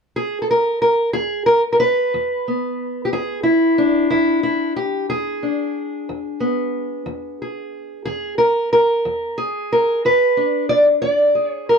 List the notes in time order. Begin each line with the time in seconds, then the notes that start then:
0.16 G#4
0.42 A4
0.51 A#4
0.82 A#4
1.13 E2 G#4
1.46 A#4
1.73 A#4
1.80 B4
2.14 E2
2.48 B3
3.05 G4
3.13 E2 G#4
3.43 E4
3.78 D4
4.10 E2 E4
4.43 E4
4.76 G4
5.10 E2 G#4
5.43 D4
6.09 E2
6.40 B3
7.06 E2
7.42 G#4
8.05 E2 G#4
8.38 A#4
8.73 A#4
9.05 E2
9.38 G#4
9.72 A#4
10.05 E2 B4
10.37 D4
10.69 D5
11.02 E2 D5
11.35 G#4
11.49 C#5
11.69 A#4